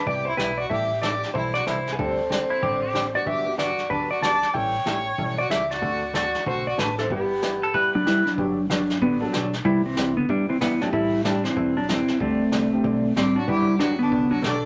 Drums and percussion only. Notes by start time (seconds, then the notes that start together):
0.07 brush sweep, kick
0.39 snare, hi-hat pedal
0.71 brush sweep, kick
1.03 snare, hi-hat pedal
1.23 snare
1.35 brush sweep, kick
1.55 snare
1.67 snare, hi-hat pedal
1.87 snare
1.99 brush sweep, kick
2.32 snare, hi-hat pedal
2.63 brush sweep, kick
2.95 snare, hi-hat pedal
3.26 brush sweep, kick
3.59 snare, hi-hat pedal
3.78 snare
3.91 brush sweep, kick
4.23 snare, hi-hat pedal
4.43 snare
4.54 brush sweep, kick
4.86 snare, hi-hat pedal
5.18 brush sweep, kick
5.51 snare, hi-hat pedal
5.71 snare
5.82 brush sweep, kick
6.15 snare, hi-hat pedal
6.35 snare
6.46 brush sweep, kick
6.79 snare, hi-hat pedal
6.98 snare
7.10 brush sweep, kick
7.42 snare, hi-hat pedal
7.74 brush sweep, kick
8.07 snare, hi-hat pedal
8.26 snare
8.38 brush sweep, kick
8.70 snare, hi-hat pedal
8.90 snare
9.02 brush sweep, kick
9.34 snare, hi-hat pedal
9.53 snare
9.65 brush sweep, kick
9.97 snare, hi-hat pedal
10.29 brush sweep, kick
10.61 snare, hi-hat pedal
10.81 snare
10.93 brush sweep, kick
11.25 snare, hi-hat pedal
11.45 snare
11.56 brush sweep, kick
11.89 snare, hi-hat pedal
12.08 snare
12.20 brush sweep, kick
12.52 snare, hi-hat pedal
12.84 brush sweep, kick
13.17 snare, hi-hat pedal
13.48 brush sweep, kick
13.80 snare, hi-hat pedal
14.12 brush sweep, kick
14.44 snare, hi-hat pedal